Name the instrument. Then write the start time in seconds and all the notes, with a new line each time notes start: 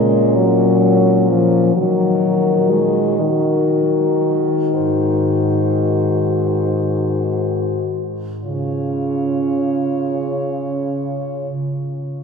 french horn
Already playing: A#2 G#3 C#4 A#4
0.36 F#3
1.29 F3
1.76 D#3 F#3 F#4 A#4
2.70 G#3
3.19 D#3 F#4 A#4
4.75 G#2 F#4 C5
8.45 C#3 F4 C#5